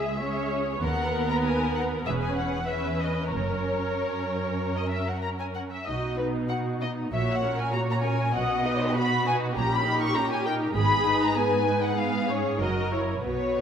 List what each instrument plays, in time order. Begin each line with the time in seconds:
Already playing: cello section C#2, viola section G#3 G#4, violin section G#4 E5
0.21 viola section C#4 G#4, violin section C#5
0.83 double bass section D#2, cello section D#2, viola section B3 B4, violin section A#4 F#5
1.29 violin section A#5
1.44 violin section G#5
1.75 violin section F#5
2.06 double bass section E1, cello section E2, viola section C#4 B4, violin section G#4 E5
2.22 violin section G#5
2.37 violin section F#5
2.67 viola section C#4 B4, violin section B4 E5
3.00 violin section D#5
3.30 double bass section F#1, cello section F#2, viola section C#4 A#4, violin section A#4 C#5
4.75 violin section D#5
4.90 violin section E5
5.08 violin section F#5
5.22 violin section A#5
5.40 violin section G#5
5.55 violin section F#5
5.71 violin section E5
5.86 double bass section B1, cello section B2, viola section D#4 F#4, violin section D#5
6.18 viola section B3 D#4, violin section B4
6.49 viola section D#4 F#4, violin section F#5
6.81 viola section B3 D#4, violin section D#5
7.12 double bass section A#1, cello section A#2, viola section A#3 F#4, violin section C#5 E5
7.33 violin section F#5
7.43 viola section C#4 A#4
7.59 violin section G#5
7.73 viola section A#3 F#4, violin section C#5 A#5
7.90 violin section A#5
8.03 viola section C#4 A#4, violin section G#5
8.34 double bass section B1, cello section B2, viola section B3 F#4, violin section D#5 F#5
8.65 viola section D#4 B4, violin section D#5
8.96 viola section B3 F#4, violin section F#4 B5
9.26 viola section D#4 B4, violin section G#5
9.56 double bass section A#1, cello section A#2, viola section C#4 G4, violin section G4 A#5
9.76 violin section B5
9.85 viola section D#4 A#4
10.02 violin section C#6
10.15 viola section C#4 G4, violin section A#5
10.31 violin section G#5
10.45 viola section D#4 A#4, violin section G5
10.76 double bass section G#1, cello section G#2, viola section B3 G#4, violin section G#4 B5
11.06 viola section D#4 B4
11.24 violin section A#5
11.37 viola section B3 G#4, violin section B4 G#5
11.67 viola section D#4 B4
11.84 violin section F#5
11.98 viola section B3 B4, violin section G#4 F5
12.29 viola section C#4 C#5, violin section C#5
12.61 double bass section F#1, cello section F#2, viola section F#4 A#4, violin section A#4 D#5
12.92 viola section E4 C#5, violin section C#5
13.24 double bass section B1, cello section B2, viola section B3 F#4, violin section B4 C#5
13.58 viola section D#4 B4